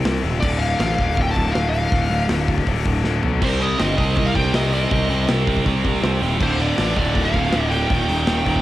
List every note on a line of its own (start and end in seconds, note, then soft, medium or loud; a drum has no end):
0.03 0.21 C2 medium
0.03 0.21 C3 medium
0.03 0.22 G3 medium
0.03 0.22 C4 loud
0.03 snare loud
0.03 open hi-hat medium
0.22 0.39 D#1 loud
0.22 0.41 C3 medium
0.22 0.41 G3 loud
0.22 0.41 C4 medium
0.22 open hi-hat medium
0.40 0.74 D1 loud
0.40 0.60 D2 loud
0.40 0.60 A2 loud
0.40 0.61 D3 loud
0.40 0.59 D5 medium
0.40 kick loud
0.40 crash loud
0.59 0.79 D2 loud
0.59 0.78 A2 loud
0.59 0.80 D3 loud
0.59 0.94 F5 loud
0.59 open hi-hat medium
0.79 0.95 A1 medium
0.79 0.98 D2 medium
0.79 0.98 A2 medium
0.79 0.99 D3 loud
0.79 snare loud
0.79 open hi-hat loud
0.95 1.14 D1 medium
0.95 1.15 D2 medium
0.95 1.21 F5 medium
0.95 kick medium
0.99 1.15 A2 medium
0.99 1.15 D3 medium
0.99 snare soft
0.99 open hi-hat medium
1.16 1.33 D1 loud
1.16 1.33 D2 loud
1.16 1.34 A2 loud
1.16 1.34 D3 loud
1.16 kick loud
1.16 open hi-hat medium
1.22 1.34 G5 loud
1.31 1.53 D2 medium
1.31 1.53 A5 loud
1.35 1.52 D1 loud
1.35 1.53 A2 medium
1.35 1.54 D3 loud
1.35 kick loud
1.35 open hi-hat medium
1.46 snare soft
1.51 1.86 D1 medium
1.51 1.72 D2 medium
1.51 1.72 A2 medium
1.51 1.73 D3 medium
1.51 1.68 F5 loud
1.51 snare loud
1.70 1.90 D2 medium
1.70 2.24 F5 medium
1.74 1.91 A2 medium
1.74 1.91 D3 medium
1.74 open hi-hat medium
1.91 2.08 D1 loud
1.91 2.08 D2 loud
1.91 2.08 A2 loud
1.91 2.09 D3 loud
1.91 kick loud
1.91 open hi-hat medium
2.09 2.26 D1 medium
2.09 2.28 D2 medium
2.09 2.28 A2 medium
2.09 2.29 D3 loud
2.09 open hi-hat medium
2.29 2.60 D1 medium
2.29 2.46 D2 medium
2.29 2.46 A2 medium
2.29 2.47 D3 medium
2.29 snare loud
2.29 open hi-hat medium
2.47 2.66 D2 medium
2.47 2.66 A2 medium
2.47 2.66 D3 medium
2.47 kick medium
2.47 open hi-hat medium
2.58 kick medium
2.67 2.83 D1 loud
2.67 2.85 D2 loud
2.67 2.86 A2 loud
2.67 2.86 D3 loud
2.67 kick loud
2.67 open hi-hat medium
2.85 3.01 D1 loud
2.85 3.03 D2 medium
2.85 3.04 A2 medium
2.85 3.04 D3 medium
2.85 kick medium
2.85 open hi-hat medium
3.04 3.20 D1 medium
3.04 3.20 D2 medium
3.04 3.21 A2 medium
3.04 3.21 D3 medium
3.04 snare medium
3.22 3.39 B1 loud
3.22 3.40 D2 medium
3.22 3.40 A2 medium
3.22 3.40 D3 medium
3.22 floor tom medium
3.41 3.73 C2 loud
3.41 3.59 C3 loud
3.41 3.60 G3 loud
3.41 3.60 C4 loud
3.41 3.62 C5 medium
3.41 kick loud
3.41 crash loud
3.59 3.78 C3 medium
3.59 3.78 G3 loud
3.59 3.79 C4 loud
3.59 3.81 D#5 medium
3.59 open hi-hat medium
3.78 3.95 G1 medium
3.78 3.96 C3 medium
3.78 3.97 G3 medium
3.78 3.97 C4 medium
3.78 3.97 D#5 loud
3.78 snare loud
3.78 open hi-hat loud
3.96 4.14 C2 medium
3.96 4.14 C3 medium
3.96 4.15 G3 loud
3.96 4.15 C4 loud
3.96 4.27 D#5 loud
3.96 kick medium
3.96 snare soft
3.96 open hi-hat medium
4.15 4.33 C2 loud
4.15 4.33 C3 loud
4.15 4.34 G3 loud
4.15 4.34 C4 loud
4.15 kick loud
4.15 open hi-hat medium
4.26 4.35 F5 loud
4.34 4.51 C2 loud
4.34 4.53 C3 medium
4.34 4.53 G3 loud
4.34 4.54 C4 loud
4.34 4.54 G5 loud
4.34 kick medium
4.34 open hi-hat medium
4.54 4.85 C2 loud
4.54 4.71 C3 medium
4.54 4.72 G3 medium
4.54 4.72 C4 medium
4.54 4.73 D#5 loud
4.54 snare loud
4.54 open hi-hat medium
4.72 4.89 C3 medium
4.72 4.90 G3 loud
4.72 4.91 C4 medium
4.72 5.26 D#5 medium
4.72 open hi-hat medium
4.90 5.07 C2 loud
4.90 5.09 C3 loud
4.90 5.10 G3 loud
4.90 5.10 C4 loud
4.90 kick loud
4.90 open hi-hat medium
5.10 5.25 C2 loud
5.10 5.29 C3 medium
5.10 5.29 G3 medium
5.10 5.29 C4 medium
5.10 open hi-hat medium
5.28 5.60 C2 medium
5.28 5.47 C3 medium
5.28 5.47 G3 medium
5.28 5.47 C4 loud
5.28 snare loud
5.28 open hi-hat medium
5.47 5.65 C3 loud
5.47 5.65 G3 medium
5.47 5.66 C4 loud
5.47 kick loud
5.47 open hi-hat medium
5.57 kick medium
5.66 5.82 C2 loud
5.66 5.82 C3 loud
5.66 5.82 G3 loud
5.66 5.83 C4 loud
5.66 kick loud
5.66 open hi-hat medium
5.83 6.00 C2 loud
5.83 6.01 C3 loud
5.83 6.01 G3 medium
5.83 6.01 C4 loud
5.83 kick medium
5.83 open hi-hat medium
5.95 snare soft
6.02 6.19 C2 medium
6.02 6.19 C3 medium
6.02 6.20 G3 medium
6.02 6.20 C4 medium
6.02 snare loud
6.02 open hi-hat medium
6.21 6.38 D#1 loud
6.21 6.39 C3 medium
6.21 6.40 G3 medium
6.21 6.39 C4 medium
6.21 open hi-hat medium
6.40 6.72 D1 loud
6.40 6.57 D2 loud
6.40 6.58 A2 loud
6.40 6.58 D3 loud
6.40 6.59 C5 loud
6.40 kick loud
6.40 crash loud
6.59 6.76 D2 medium
6.59 6.77 A2 medium
6.59 6.77 D3 loud
6.59 6.96 D5 loud
6.59 open hi-hat medium
6.77 6.94 A1 loud
6.77 6.95 D2 medium
6.77 6.95 A2 medium
6.77 6.96 D3 medium
6.77 snare loud
6.77 open hi-hat loud
6.96 7.12 D1 loud
6.96 7.13 D2 medium
6.96 7.14 A2 loud
6.96 7.13 D3 loud
6.96 7.23 D5 loud
6.96 kick medium
6.96 snare soft
6.96 open hi-hat medium
7.14 7.31 D1 loud
7.14 7.31 D2 loud
7.14 7.31 A2 loud
7.14 7.32 D3 loud
7.14 kick loud
7.14 open hi-hat medium
7.25 7.73 F5 loud
7.32 7.50 D1 medium
7.32 7.50 D2 medium
7.32 7.51 A2 loud
7.32 7.51 D3 loud
7.32 kick loud
7.32 open hi-hat medium
7.43 snare soft
7.51 7.84 D1 medium
7.51 7.69 D2 medium
7.51 7.69 A2 loud
7.51 7.69 D3 medium
7.51 snare loud
7.51 open hi-hat medium
7.70 7.87 D2 medium
7.70 7.88 A2 medium
7.70 7.87 D3 medium
7.70 8.62 G5 loud
7.70 open hi-hat medium
7.87 8.06 D#1 loud
7.87 8.05 D#2 loud
7.87 8.06 A#2 loud
7.87 8.06 D#3 loud
7.87 kick loud
7.87 open hi-hat medium
8.06 8.25 D#1 medium
8.06 8.24 D#2 medium
8.06 8.25 A#2 loud
8.06 8.25 D#3 medium
8.06 open hi-hat medium
8.26 8.59 D#1 loud
8.26 8.43 D#2 medium
8.26 8.43 A#2 medium
8.26 8.44 D#3 medium
8.26 snare loud
8.26 open hi-hat medium
8.44 8.62 D#2 medium
8.44 8.62 A#2 loud
8.44 8.62 D#3 medium
8.44 kick medium
8.44 open hi-hat medium
8.56 kick medium